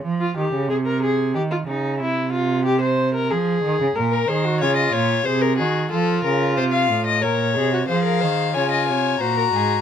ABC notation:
X:1
M:3/4
L:1/16
Q:1/4=92
K:Bbm
V:1 name="Violin"
z12 | z12 | z12 | z12 |
f4 a4 b4 |]
V:2 name="Violin"
z12 | z12 | z B c2 d e d2 c B A2 | =A2 B2 c f2 e d4 |
c B c2 d e d2 c B A2 |]
V:3 name="Viola"
z F =G2 A B A2 G F E2 | =E2 F2 =G c2 B A4 | B2 A G F4 A2 G2 | F8 B2 A G |
A4 F4 G4 |]
V:4 name="Cello" clef=bass
F,2 E, D, C,4 E,2 D,2 | C,8 F,2 E, D, | B,,2 E,2 D,2 B,,2 C,2 E,2 | F,2 D,2 C,2 =A,,2 B,,2 C,2 |
F,2 E,2 D,2 C,2 B,,2 A,,2 |]